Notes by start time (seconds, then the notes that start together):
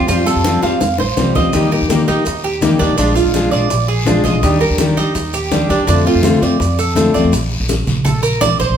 0.07 F2 F3 G3 C4 F4, high bongo, high conga, long guiro, maracas
0.26 G3 C4 F4 A4, high bongo, high conga, maracas
0.36 F2
0.44 F3 G3 C4 F4, low bongo, high conga, short guiro, maracas
0.63 F2 G3 C4 F4 F5, high bongo, high conga, short guiro, maracas
0.81 F2, muted steel-string acoustic guitar stroke, low bongo, high conga, long guiro, maracas
0.98 A1 C5, low bongo, high conga
1.17 C2 F3 G3 C4 F4, low bongo, high conga, short guiro, maracas
1.35 D2 G3 C4 F4 D#5, low bongo, high conga, short guiro, maracas
1.53 D#2 D#3 G3 A#3 D#4 G4, high bongo, high conga, long guiro, maracas
1.72 A#3 D#4 G4 A#4, high bongo, high conga
1.81 D#2
1.89 D#3 G3 A#3 D#4 G4, high bongo, high conga, short guiro, maracas
2.08 D#2 A#3 D#4 G4, high conga, short guiro, maracas
2.26 D#2, muted steel-string acoustic guitar stroke, high bongo, high conga, long guiro, maracas
2.44 G4, high bongo, high conga
2.61 D#3 G3 A#3 D#4 G4, high bongo, low bongo, high conga, short guiro, maracas
2.79 D#2 A#3 D4 D#4 G4, high bongo, high conga, short guiro, maracas
2.89 C2
2.97 A#1 F3 G#3 D4 F4, high bongo, high conga, long guiro, maracas
3.15 G#3 D4 F4, high bongo, high conga, maracas
3.25 A#1
3.34 F3 G#3 D4 F4, high bongo, high conga, short guiro, maracas
3.51 A#1 G#3 D4 F4 D5, high conga, short guiro, maracas
3.70 A#1, muted steel-string acoustic guitar stroke, high bongo, high conga, long guiro, maracas
3.88 G#4, high conga
4.06 F3 G#3 D4 F4, high bongo, low bongo, high conga, short guiro, maracas
4.24 A#1 G#3 D4 F4 D#5, high bongo, high conga, short guiro, maracas
4.34 A#1
4.42 D#2 D#3 G3 D4 G4, high bongo, high conga, long guiro, maracas
4.60 G3 D4 G4 A#4, high bongo, high conga
4.70 D#2
4.78 D#3 G3 D4 G4, high bongo, high conga, short guiro, maracas
4.97 D#2 G3 D4 D#4 G4, high conga, short guiro, maracas
5.15 D#2, muted steel-string acoustic guitar stroke, high bongo, long guiro, maracas
5.33 G4, high bongo, high conga, maracas
5.51 D#3 G3 D4 G4, high bongo, low bongo, high conga, short guiro, maracas
5.69 D#2 G3 D4 G4, high bongo, high conga, short guiro, maracas
5.79 D#2
5.87 F2 D3 A3 C4 D4 F4, high bongo, high conga, long guiro, maracas
6.05 A3 C4 F4, high bongo, high conga
6.15 F2
6.23 D3 A3 C4 F4, high bongo, high conga, short guiro, maracas
6.41 F2 A3 C4 F4 D5, high conga, short guiro, maracas
6.60 F2, muted steel-string acoustic guitar stroke, high bongo, high conga, long guiro, maracas
6.78 A4, high conga, maracas
6.95 D3 A3 C4 F4, high bongo, low bongo, high conga, short guiro, maracas
7.14 F2 A3 C4 F4 D5, high bongo, high conga, short guiro, maracas
7.24 F2
7.32 A#1, high bongo, high conga, long guiro, maracas
7.51 high bongo, high conga
7.60 A#1
7.69 high bongo, high conga, short guiro, maracas
7.87 A#1, high conga, low conga, short guiro, maracas
8.05 A#1 A4, high bongo, high conga, low conga, long guiro, maracas
8.23 A#4, high bongo, high conga, maracas
8.41 D5, high bongo, low bongo, high conga, short guiro, maracas
8.59 A#1 C5, high bongo, high conga, short guiro, maracas
8.69 A#1